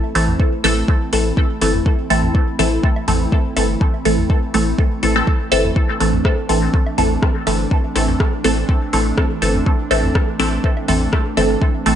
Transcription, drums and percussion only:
0.15 open hi-hat medium
0.28 mid tom medium
0.40 kick loud
0.64 open hi-hat medium
0.88 kick loud
1.13 open hi-hat medium
1.37 kick loud
1.61 open hi-hat medium
1.74 mid tom medium
1.86 kick loud
2.10 open hi-hat medium
2.23 mid tom medium
2.35 kick loud
2.59 open hi-hat medium
2.83 kick loud
2.96 low woodblock medium
3.08 mid tom medium
3.08 open hi-hat medium
3.32 kick loud
3.56 open hi-hat medium
3.56 low woodblock medium
3.81 kick loud
4.05 open hi-hat medium
4.18 mid tom medium
4.30 kick loud
4.54 open hi-hat medium
4.78 kick loud
5.03 open hi-hat medium
5.27 kick loud
5.52 open hi-hat medium
5.65 mid tom medium
5.76 kick loud
6.00 open hi-hat medium
6.13 mid tom medium
6.25 kick loud
6.25 cross-stick medium
6.49 open hi-hat medium
6.74 kick loud
6.87 low woodblock medium
6.98 mid tom medium
6.98 open hi-hat medium
7.22 kick loud
7.22 cross-stick medium
7.47 open hi-hat medium
7.47 low woodblock medium
7.71 kick loud
7.96 open hi-hat medium
8.09 mid tom medium
8.20 kick loud
8.20 cross-stick medium
8.44 open hi-hat medium
8.69 kick loud
8.93 open hi-hat medium
9.18 kick loud
9.18 cross-stick medium
9.42 open hi-hat medium
9.55 mid tom medium
9.66 kick loud
9.91 open hi-hat medium
10.04 mid tom medium
10.15 kick loud
10.15 cross-stick medium
10.40 open hi-hat medium
10.64 kick loud
10.77 low woodblock medium
10.88 mid tom medium
10.88 open hi-hat medium
11.13 kick loud
11.13 cross-stick medium
11.37 open hi-hat medium
11.37 low woodblock medium
11.62 kick loud
11.86 open hi-hat medium

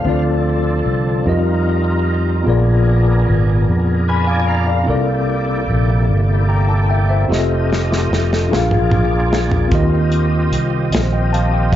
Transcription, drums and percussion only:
7.32 snare soft
7.73 snare medium
7.92 snare medium
8.13 snare medium
8.33 snare medium
8.53 snare medium
8.71 mid tom medium
8.91 mid tom medium
9.33 snare medium
9.52 floor tom medium
9.71 kick loud
9.71 closed hi-hat medium
10.12 closed hi-hat soft
10.53 closed hi-hat medium
10.92 snare loud
10.92 closed hi-hat medium
11.34 closed hi-hat soft
11.73 kick medium

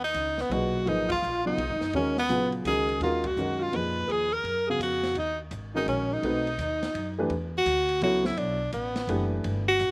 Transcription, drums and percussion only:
0.14 hi-hat pedal soft
0.14 ride medium
0.38 snare soft
0.51 ride medium
0.87 ride soft
1.09 kick medium
1.09 ride medium
1.23 hi-hat pedal soft
1.58 ride medium
1.81 snare soft
1.93 ride soft
2.17 snare soft
2.29 hi-hat pedal soft
2.29 ride medium
2.52 ride soft
2.65 hi-hat pedal medium
2.65 ride medium
2.89 ride soft
3.01 ride soft
3.24 kick medium
3.24 ride medium
3.37 hi-hat pedal soft
3.73 ride medium
4.09 ride soft
4.45 ride soft
4.81 hi-hat pedal medium
4.81 ride medium
5.03 snare soft
5.03 ride soft
5.15 ride soft
5.51 hi-hat pedal soft
5.51 ride soft
5.88 ride medium
6.23 ride soft
6.47 ride soft
6.59 hi-hat pedal soft
6.59 ride medium
6.83 snare soft
6.83 ride soft
6.95 ride medium
7.30 ride soft
7.66 hi-hat pedal soft
7.66 ride medium
7.89 ride soft
8.02 ride medium
8.25 snare medium
8.37 ride medium
8.72 hi-hat pedal soft
8.72 ride medium
8.96 snare medium
8.96 ride soft
9.09 ride medium
9.44 ride medium
9.79 hi-hat pedal medium
9.79 ride medium

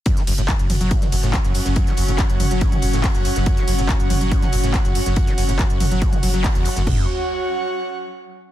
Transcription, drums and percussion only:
0.06 kick loud
0.06 closed hi-hat loud
0.06 closed hi-hat medium
0.06 ride medium
0.17 snare medium
0.17 closed hi-hat medium
0.27 closed hi-hat medium
0.27 open hi-hat loud
0.27 ride medium
0.38 closed hi-hat medium
0.48 kick loud
0.48 snare loud
0.48 clap loud
0.48 closed hi-hat medium
0.48 ride medium
0.59 closed hi-hat medium
0.70 closed hi-hat medium
0.70 mid tom medium
0.70 open hi-hat loud
0.70 ride medium
0.81 closed hi-hat soft
0.81 closed hi-hat medium
0.91 kick loud
0.91 closed hi-hat medium
0.91 ride medium
1.02 snare soft
1.02 closed hi-hat medium
1.02 mid tom medium
1.12 closed hi-hat medium
1.12 open hi-hat loud
1.12 ride medium
1.23 snare medium
1.23 closed hi-hat medium
1.33 kick loud
1.33 snare loud
1.33 clap loud
1.33 closed hi-hat medium
1.33 ride medium
1.45 snare soft
1.45 closed hi-hat medium
1.54 closed hi-hat medium
1.54 open hi-hat medium
1.54 ride medium
1.65 snare medium
1.65 closed hi-hat medium
1.76 kick loud
1.76 closed hi-hat medium
1.76 ride medium
1.87 snare soft
1.87 closed hi-hat medium
1.97 closed hi-hat medium
1.97 open hi-hat loud
1.97 ride medium
2.08 closed hi-hat medium
2.08 closed hi-hat soft
2.18 kick loud
2.18 snare loud
2.18 clap loud
2.18 closed hi-hat medium
2.18 ride medium
2.30 closed hi-hat medium
2.40 closed hi-hat medium
2.40 mid tom medium
2.40 open hi-hat loud
2.40 ride medium
2.51 closed hi-hat medium
2.61 kick loud
2.61 closed hi-hat medium
2.61 ride medium
2.72 closed hi-hat medium
2.72 mid tom medium
2.82 closed hi-hat medium
2.82 open hi-hat loud
2.82 ride medium
2.93 snare medium
2.93 closed hi-hat medium
3.04 kick loud
3.04 snare loud
3.04 clap loud
3.04 closed hi-hat medium
3.04 open hi-hat medium
3.04 ride medium
3.15 snare soft
3.15 closed hi-hat medium
3.25 closed hi-hat medium
3.25 open hi-hat medium
3.25 ride medium
3.36 snare medium
3.36 closed hi-hat medium
3.46 kick loud
3.46 closed hi-hat medium
3.46 ride medium
3.57 snare soft
3.57 closed hi-hat medium
3.68 closed hi-hat medium
3.68 open hi-hat loud
3.68 ride medium
3.79 closed hi-hat medium
3.89 kick loud
3.89 snare loud
3.89 clap loud
3.89 closed hi-hat medium
3.89 ride medium
4.00 closed hi-hat medium
4.10 closed hi-hat medium
4.10 mid tom medium
4.10 open hi-hat loud
4.10 ride medium
4.21 closed hi-hat soft
4.21 closed hi-hat medium
4.32 kick loud
4.32 closed hi-hat medium
4.32 ride medium
4.42 snare medium
4.42 closed hi-hat medium
4.42 mid tom medium
4.52 closed hi-hat medium
4.52 open hi-hat loud
4.52 ride medium
4.63 snare soft
4.63 closed hi-hat medium
4.74 kick loud
4.74 snare loud
4.74 clap loud
4.74 closed hi-hat medium
4.74 ride medium
4.85 snare soft
4.85 closed hi-hat medium
4.95 closed hi-hat medium
4.95 open hi-hat loud
4.95 ride medium
5.06 snare medium
5.06 closed hi-hat medium
5.16 kick loud
5.16 closed hi-hat medium
5.16 ride medium
5.27 snare medium
5.27 closed hi-hat medium
5.38 closed hi-hat medium
5.38 open hi-hat loud
5.38 ride medium
5.49 closed hi-hat medium
5.49 closed hi-hat soft
5.59 kick loud
5.59 snare loud
5.59 clap loud
5.59 closed hi-hat medium
5.59 ride medium
5.70 closed hi-hat medium
5.80 closed hi-hat medium
5.80 mid tom medium
5.80 open hi-hat loud
5.80 ride medium
5.91 closed hi-hat medium
6.02 kick loud
6.02 closed hi-hat medium
6.02 ride medium
6.13 closed hi-hat medium
6.13 mid tom medium
6.23 closed hi-hat medium
6.23 open hi-hat loud
6.23 ride medium
6.34 snare medium
6.34 closed hi-hat medium
6.44 kick loud
6.44 snare loud
6.44 clap loud
6.44 closed hi-hat medium
6.44 open hi-hat medium
6.44 ride medium
6.55 snare soft
6.55 closed hi-hat medium
6.65 closed hi-hat medium
6.65 open hi-hat loud
6.65 ride medium
6.76 snare medium
6.76 closed hi-hat medium
6.87 kick loud
6.87 floor tom loud
6.87 crash medium

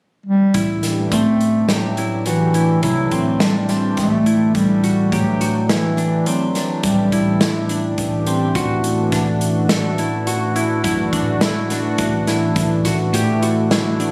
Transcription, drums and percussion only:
0.54 kick loud
0.54 closed hi-hat medium
0.83 snare soft
0.83 closed hi-hat medium
1.12 kick loud
1.12 closed hi-hat medium
1.41 closed hi-hat medium
1.69 snare medium
1.69 closed hi-hat medium
1.97 closed hi-hat medium
2.26 closed hi-hat medium
2.54 closed hi-hat medium
2.83 kick loud
2.83 closed hi-hat medium
3.11 kick medium
3.11 closed hi-hat medium
3.40 snare loud
3.40 closed hi-hat medium
3.69 snare soft
3.69 closed hi-hat medium
3.97 kick medium
3.97 snare soft
3.97 closed hi-hat medium
4.26 closed hi-hat medium
4.55 kick loud
4.55 closed hi-hat medium
4.84 closed hi-hat medium
5.12 kick loud
5.12 closed hi-hat medium
5.41 closed hi-hat medium
5.69 snare medium
5.69 closed hi-hat medium
5.98 closed hi-hat medium
6.26 closed hi-hat medium
6.55 snare soft
6.55 closed hi-hat medium
6.83 kick loud
6.83 closed hi-hat medium
7.12 kick medium
7.12 closed hi-hat medium
7.41 snare loud
7.41 closed hi-hat medium
7.69 closed hi-hat medium
7.98 kick loud
7.98 closed hi-hat medium
8.26 closed hi-hat medium
8.55 kick loud
8.55 closed hi-hat medium
8.84 closed hi-hat medium
9.12 kick loud
9.12 snare soft
9.12 closed hi-hat medium
9.41 closed hi-hat medium
9.69 snare loud
9.69 closed hi-hat medium
9.98 closed hi-hat medium
10.27 closed hi-hat medium
10.56 closed hi-hat medium
10.84 kick loud
10.84 closed hi-hat medium
11.13 kick medium
11.13 closed hi-hat medium
11.41 snare loud
11.41 closed hi-hat medium
11.70 snare soft
11.70 closed hi-hat medium
11.98 kick loud
11.98 closed hi-hat medium
12.27 snare soft
12.27 closed hi-hat medium
12.56 kick loud
12.56 closed hi-hat medium
12.85 kick medium
12.85 snare soft
12.85 closed hi-hat medium
13.14 closed hi-hat medium
13.43 closed hi-hat medium
13.71 snare loud
13.71 closed hi-hat medium
14.00 closed hi-hat medium

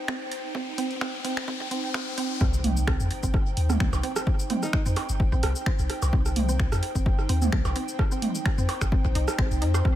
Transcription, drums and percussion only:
0.08 finger snap medium
0.08 kick loud
0.32 open hi-hat medium
0.55 kick loud
0.78 open hi-hat medium
0.91 open hi-hat soft
1.01 finger snap medium
1.01 kick loud
1.25 open hi-hat medium
1.37 finger snap medium
1.37 kick medium
1.48 kick loud
1.60 kick medium
1.71 open hi-hat medium
1.94 finger snap medium
1.94 kick loud
1.94 open hi-hat soft
2.18 open hi-hat loud
2.41 kick loud
2.41 cross-stick soft
2.54 shaker soft
2.64 mid tom medium
2.64 open hi-hat medium
2.77 shaker medium
2.87 finger snap medium
2.87 kick loud
2.87 cross-stick medium
3.00 shaker soft
3.11 open hi-hat medium
3.23 kick medium
3.23 shaker medium
3.34 kick loud
3.34 cross-stick soft
3.57 open hi-hat medium
3.69 cross-stick soft
3.69 mid tom loud
3.69 shaker medium
3.80 finger snap loud
3.80 kick loud
3.93 percussion blips medium
3.93 shaker soft
4.03 open hi-hat medium
4.16 cross-stick medium
4.16 shaker medium
4.27 kick loud
4.39 shaker soft
4.50 mid tom medium
4.50 open hi-hat loud
4.63 cross-stick soft
4.63 shaker medium
4.73 finger snap loud
4.73 kick loud
4.86 shaker soft
4.96 cross-stick soft
4.96 open hi-hat loud
4.96 percussion blips medium
5.09 shaker medium
5.20 kick loud
5.32 kick medium
5.43 cross-stick medium
5.43 open hi-hat loud
5.55 shaker medium
5.66 finger snap medium
5.66 kick loud
5.79 shaker soft
5.90 cross-stick soft
5.90 open hi-hat loud
6.02 percussion blips medium
6.02 shaker medium
6.13 kick loud
6.25 cross-stick soft
6.25 shaker soft
6.36 mid tom medium
6.36 open hi-hat loud
6.49 shaker medium
6.59 finger snap medium
6.59 kick loud
6.72 cross-stick medium
6.72 shaker soft
6.83 open hi-hat loud
6.95 kick medium
6.95 shaker medium
7.06 kick loud
7.19 cross-stick soft
7.29 open hi-hat loud
7.42 mid tom medium
7.42 shaker medium
7.52 finger snap medium
7.52 kick loud
7.52 cross-stick soft
7.65 percussion blips medium
7.65 shaker soft
7.76 open hi-hat loud
7.88 shaker soft
7.99 kick loud
7.99 cross-stick medium
8.11 shaker soft
8.22 mid tom medium
8.22 open hi-hat loud
8.35 shaker medium
8.46 finger snap medium
8.46 kick loud
8.46 cross-stick soft
8.58 shaker soft
8.69 open hi-hat loud
8.69 percussion blips medium
8.81 finger snap medium
8.81 kick medium
8.81 cross-stick soft
8.81 shaker soft
8.92 kick loud
9.05 kick medium
9.15 open hi-hat loud
9.28 cross-stick medium
9.28 shaker soft
9.39 finger snap medium
9.39 kick loud
9.51 shaker soft
9.62 open hi-hat loud
9.74 cross-stick soft
9.74 percussion blips medium
9.74 shaker soft
9.85 kick loud
9.85 cross-stick soft

